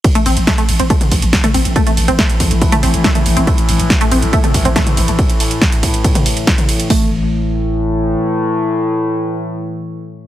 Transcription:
<<
  \new Staff \with { instrumentName = "Synth arpeggio sound" } { \time 4/4 \key c \mixolydian \tempo 4 = 140 r16 a16 c'16 r16 a16 a16 r16 c'16 a16 r4 a16 c'16 r16 | a16 a16 r16 c'16 a16 r4 a16 c'16 r16 a16 a16 r16 c'16 | a16 r4 a16 c'16 r16 a16 a16 r16 c'16 a16 r8. | r1 |
a8 r2. r8 | r1 | }
  \new Staff \with { instrumentName = "Synth drone" } { \clef bass \time 4/4 \key c \mixolydian <a, e>1~ | <a, e>1~ | <a, e>1~ | <a, e>1 |
<a, e>1~ | <a, e>1 | }
  \new Staff \with { instrumentName = "808-style bass" } { \clef bass \time 4/4 \key c \mixolydian r8 a,,16 a,,16 r8 a,,16 a,,16 r8 a,,16 a,,16 r8 a,,16 a,,16 | r8 a,,16 a,,16 r8 a,,16 a,,16 r8 a,,16 a,,16 r8 a,,16 a,,16 | r8 a,,16 a,,16 r8 a,,16 a,,16 r8 a,,16 a,,16 r8 a,,16 a,,16 | r1 |
a,,2. r4 | r1 | }
  \new DrumStaff \with { instrumentName = "Drums" } \drummode { \time 4/4 <hh bd cymr>16 <hh cymr>16 <hho cymr>16 <hh cymr>16 <hh bd cymr sn>16 <hh cymr>16 <hho cymr>16 <hh cymr>16 <hh bd cymr>16 <hh cymr toml>16 <hho bd cymr>16 <hh cymr>16 <hh bd cymr sn>16 <hh cymr toml>16 <hho cymr>16 <hh cymr>16 | <hh bd cymr>16 <hh cymr>16 <hho cymr>16 <hh cymr>16 <hh bd cymr sn>16 <hh cymr>16 <hho bd cymr>16 <hh cymr>16 <hh bd cymr>16 <hh cymr toml>16 <hho cymr>16 <hh cymr>16 <hh bd cymr sn>16 <hh cymr toml>16 <hho cymr>16 <hh cymr>16 | <hh bd cymr>16 <hh cymr>16 <hho cymr>16 <hh cymr>16 <hh bd cymr sn>16 <hh cymr>16 <hho cymr>16 <hh cymr>16 <hh bd cymr>16 <hh cymr toml>16 <hho bd cymr>16 <hh cymr>16 <hh bd cymr sn>16 <hh cymr toml>16 <hho cymr>16 <hh cymr>16 | <hh bd cymr>16 <hh cymr>16 <hho cymr>16 <hh cymr>16 <hh bd cymr sn>16 <hh cymr>16 <hho bd cymr>16 <hh cymr>16 <hh bd cymr>16 <hh cymr toml>16 <hho cymr>16 <hh cymr>16 <hh bd cymr sn>16 <hh cymr toml>16 <hho cymr>16 <hh cymr>16 |
<hho bd>4 r4 r4 r4 | r4 r4 r4 r4 | }
>>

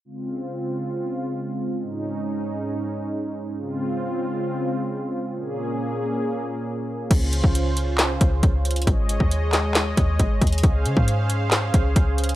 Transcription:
<<
  \new Staff \with { instrumentName = "Analog synth pad" } { \time 4/4 \key des \major \tempo 4 = 136 << { <des c' f'>1 | <aes, des' ees'>1 | <des c' f'>1 | <bes, des' aes'>1 |
<des f' c''>1 | <aes des'' ees''>1 | <des' c'' f''>1 | } \\ { aes1~ | aes1~ | aes1 | bes1 |
des'1 | aes'1~ | aes'1 | } >> }
  \new Staff \with { instrumentName = "808-style bass" } { \clef bass \time 4/4 \key des \major r1 | r1 | r1 | r1 |
des,8. des,4.~ des,16 des,8 des,4 | aes,,8. ees,4.~ ees,16 ees,8 aes,,8 ees,8 | des,8 des16 aes,4.~ aes,16 des,8 des,4 | }
  \new DrumStaff \with { instrumentName = "Drums" } \drummode { \time 4/4 r4 r4 r4 r4 | r4 r4 r4 r4 | r4 r4 r4 r4 | r4 r4 r4 r4 |
<cymc hh bd>8 hh16 bd16 hh8 hh8 <hc hh sn>8 <hh bd>8 <hh bd>8 hh32 hh32 hh32 hh32 | <hh bd>8 hh16 bd16 hh8 <hc hh sn>8 <hc hh sn>8 <hh bd>8 <hh bd>8 <hh bd>32 hh32 hh32 hh32 | <hh bd>8 hh16 bd16 hh8 hh8 <hc hh sn>8 <hh bd>8 <hh bd>8 hh32 hh32 hh16 | }
>>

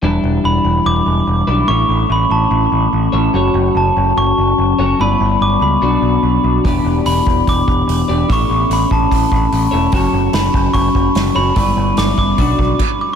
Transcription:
<<
  \new Staff \with { instrumentName = "Glockenspiel" } { \time 4/4 \key e \dorian \tempo 4 = 146 r4 b''4 d'''2 | cis'''4 b''8 a''2 r8 | r4 a''4 cis'''4. r8 | b''4 d'''8 b''4 r4. |
r4 b''4 d'''2 | cis'''4 b''8 a''2 r8 | r4 b''4 cis'''4. b''8~ | b''4 d'''8 d'''2 d'''16 r16 | }
  \new Staff \with { instrumentName = "Clean electric guitar" } { \time 4/4 \key e \dorian <e g d' e' b'>2.~ <e g d' e' b'>8 <e g d' e' b'>8 | <a cis' e' a' cis''>2.~ <a cis' e' a' cis''>8 <a cis' e' a' cis''>8 | <fis cis' fis' a' cis''>2.~ <fis cis' fis' a' cis''>8 <fis cis' fis' a' cis''>8 | <g b e' b' d''>2 <b, fis b d' fis' d''>2 |
<e b d' g' d''>2.~ <e b d' g' d''>8 <e b d' g' d''>8 | <a cis' e' a' cis''>2.~ <a cis' e' a' cis''>8 <a cis' e' a' cis''>8 | <fis cis' fis' a' cis''>2.~ <fis cis' fis' a' cis''>8 <fis cis' fis' a' cis''>8 | <g b e' b' d''>2 <b, fis b d' fis' d''>4 r4 | }
  \new Staff \with { instrumentName = "Picked electric bass" } { \clef bass \time 4/4 \key e \dorian e,,8 e,,8 e,,8 e,,8 e,,8 e,,8 e,,8 b,,8 | a,,8 a,,8 a,,8 a,,8 a,,8 a,,8 a,,8 a,,8 | fis,,8 fis,,8 fis,,8 fis,,8 fis,,8 fis,,8 fis,,8 fis,,8 | g,,8 g,,8 g,,8 cis,8 b,,8 b,,8 b,,8 b,,8 |
e,,8 e,,8 e,,8 e,,8 e,,8 e,,8 e,,8 e,,8 | a,,8 a,,8 a,,8 a,,8 a,,8 a,,8 a,,8 e,,8 | fis,,8 fis,,8 fis,,8 fis,,8 fis,,8 fis,,8 fis,,8 fis,,8 | g,,8 g,,8 g,,8 g,,8 b,,8 b,,8 r4 | }
  \new DrumStaff \with { instrumentName = "Drums" } \drummode { \time 4/4 r4 r4 r4 r4 | r4 r4 r4 r4 | r4 r4 r4 r4 | r4 r4 r4 r4 |
<hho bd>4 hho8 bd8 <hho bd>8 bd8 hho4 | <hho bd>4 hho8 bd8 <hho bd>8 bd8 hho4 | <hho bd>4 <hho sn>8 bd8 <hho bd>8 bd8 <hho sn>4 | <hho bd>4 <hho sn>8 bd8 <hho bd>8 bd8 <cymc bd>4 | }
>>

